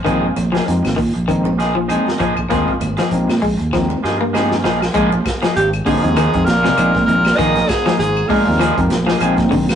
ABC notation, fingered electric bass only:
X:1
M:4/4
L:1/16
Q:"Swing 16ths" 1/4=98
K:Cm
V:1 name="Fingered electric bass" clef=bass
B,,,2 B,,,2 F,, A,,, B,, B,,,6- B,,, B,,,2 | E,, z A,,, z B,,, B,, B,,, E,,3 G,,4 B,,,2 | B,,,2 z2 A,,,2 z E,,2 F,, B,,,2 B,,,2 B,,,2 | B,,,2 z2 A,,,2 z E,,2 F,, B,,,2 B,,,2 B,,,2 |]